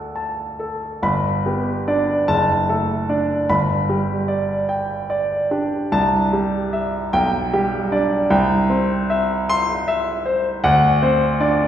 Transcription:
Already playing: D2 A3 A4 F#5 A5
0.16 A5
0.59 A4
1.03 G1 B5
1.46 B3 G4
1.88 D4 D5
2.28 F#1 A5
2.69 A3 A4
3.09 D4 D5
3.49 G1 B5
3.89 G3 G4
4.28 D5
4.69 G5
5.10 D5
5.51 D4 G4
5.92 C2 A5
6.33 G3 G4
6.73 E5
7.13 B1 G5
7.53 G3 G4
7.92 D4 D5
8.30 C2 G5
8.70 C4 C5
9.10 E5
9.49 C6
9.88 E5
10.26 C5
10.64 D2 F#5
11.02 C4 C5
11.40 D4 D5

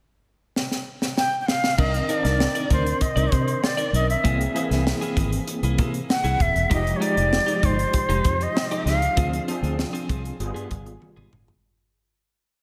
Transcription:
0.56 snare
0.71 snare
1.02 snare
1.17 G5, snare
1.41 G5
1.47 F5, snare
1.64 snare
1.78 C2 D#3 C4 D4 D#4 A#4 D5 D#5, kick, crash
1.93 muted clean electric guitar stroke, closed hi-hat
2.08 D#3 C4 D4 D#4 A#4 D5 D#5, closed hi-hat
2.19 D5
2.24 C2 D#4 A#4 D5, snare, closed hi-hat
2.40 muted clean electric guitar stroke, snare
2.55 D#4 A#4 D5, closed hi-hat
2.70 D2 D#4 A#4 C5 D5, kick, closed hi-hat
2.85 muted clean electric guitar stroke, closed hi-hat
3.01 D#5, muted clean electric guitar stroke, kick, closed hi-hat
3.16 C2 D#4 A#4 D5, closed hi-hat
3.32 C3 C5, muted clean electric guitar stroke, kick, closed hi-hat
3.47 muted clean electric guitar stroke, closed hi-hat
3.63 D5, muted clean electric guitar stroke, snare
3.77 D#4 A#4 D5, closed hi-hat
3.93 B1 D#4 A#4 D5 D#5, closed hi-hat
4.09 E5, muted clean electric guitar stroke, closed hi-hat
4.23 C2 E3 A#3 C4 E4 G#4, kick, closed hi-hat
4.40 muted clean electric guitar stroke, closed hi-hat
4.54 E3 A#3 C4 E4 G#4, closed hi-hat
4.70 C2 A#3 E4 G#4, snare, closed hi-hat
4.86 muted clean electric guitar stroke, snare
5.01 A#3 E4 G#4, closed hi-hat
5.17 G#1 A#3 E4 G#4, kick, closed hi-hat
5.32 muted clean electric guitar stroke, closed hi-hat
5.47 muted clean electric guitar stroke, closed hi-hat
5.63 C2 A#3 E4 G#4, closed hi-hat
5.78 C3 A#3 E4 G#4, kick, closed hi-hat
5.94 muted clean electric guitar stroke, closed hi-hat
6.09 F#5, muted clean electric guitar stroke, snare
6.24 C2 A#3 E4 G#4, closed hi-hat
6.40 D#1 E5, muted clean electric guitar stroke, kick, closed hi-hat
6.55 E1, muted clean electric guitar stroke, closed hi-hat
6.70 F1 F3 G#3 D#4 G4 D#5, kick, closed hi-hat
6.86 muted clean electric guitar stroke, closed hi-hat
6.96 G#3 C#5
7.01 F3 G#3 D#4 G4 D5, closed hi-hat
7.16 F1 G#3 D#4 G4, closed hi-hat
7.32 muted clean electric guitar stroke, snare
7.46 G#3 D#4 G4, closed hi-hat
7.62 G1 G#3 D#4 G4 C5, kick, closed hi-hat
7.78 muted clean electric guitar stroke, closed hi-hat
7.93 muted clean electric guitar stroke, kick, closed hi-hat
8.09 F1 G#3 D#4 G4, closed hi-hat
8.24 F2, muted clean electric guitar stroke, kick, closed hi-hat
8.41 D#5, muted clean electric guitar stroke, closed hi-hat
8.56 muted clean electric guitar stroke, snare
8.71 G#3 D#4 G4, closed hi-hat
8.85 C#2 G#3 D#4 G4 F5, snare, closed hi-hat
9.02 muted clean electric guitar stroke, closed hi-hat
9.16 D2 F3 C4 D4 F4 G#4, kick, closed hi-hat
9.32 muted clean electric guitar stroke, closed hi-hat
9.48 F3 C4 D4 F4 G#4, closed hi-hat
9.62 D2 C4 F4 G#4, closed hi-hat
9.78 muted clean electric guitar stroke, snare
9.93 C4 F4 G#4, closed hi-hat
10.08 C2 C4 F4 G#4, kick, closed hi-hat
10.24 muted clean electric guitar stroke, closed hi-hat
10.39 G1 G3 B3 F4 G#4, muted clean electric guitar stroke, closed hi-hat
10.54 G2 B3 F4 G#4, closed hi-hat
10.70 G1, muted clean electric guitar stroke, kick, closed hi-hat
10.86 G#1, muted clean electric guitar stroke, closed hi-hat
11.01 muted clean electric guitar stroke, high tom
11.16 G#1 B3 F4 G#4, mid tom
11.32 G1, muted clean electric guitar stroke, mid tom
11.48 F#1, muted clean electric guitar stroke, floor tom

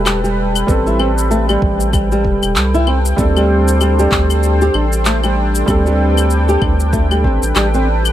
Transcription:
Already playing: E1 G3 C4 A4 B4 G5
0.06 G3, clap, claves, shaker
0.24 G3, shaker
0.56 claves, shaker
0.67 A1 G3 C4 A4 B4, kick, shaker
0.87 E4, shaker
0.99 C4, claves
1.18 shaker
1.31 A3, shaker
1.49 G3, claves, shaker
1.62 A1, kick
1.80 shaker
1.93 G3, kick, claves, shaker
2.12 G3, shaker
2.25 E1, kick
2.43 E1, claves, shaker
2.56 C2, clap, shaker
2.74 E4, shaker
2.87 C4, claves
3.05 shaker
3.16 D2 G3 A3 C4 D4 A4 C5, kick, shaker
3.20 A4
3.37 G3, claves, shaker
3.68 shaker
3.81 G3, claves, shaker
3.99 G3, shaker
4.12 D2, kick, clap
4.30 claves, shaker
4.43 shaker
4.61 G4, shaker
4.74 A1 D4, claves
4.92 shaker
5.05 A3, clap, shaker
5.23 G3, claves, shaker
5.55 shaker
5.66 D2 G3 C4 D4 A4 B4, kick, claves, shaker
5.86 G3, shaker
6.17 claves, shaker
6.30 shaker
6.49 G4, shaker
6.62 D2 D4, kick, claves
6.80 shaker
6.93 A3, kick, shaker
7.11 G3, claves, shaker
7.24 A1 C4, kick
7.43 A1, shaker
7.56 A1 G3, clap, claves, shaker
7.74 C4, shaker
8.05 claves, shaker

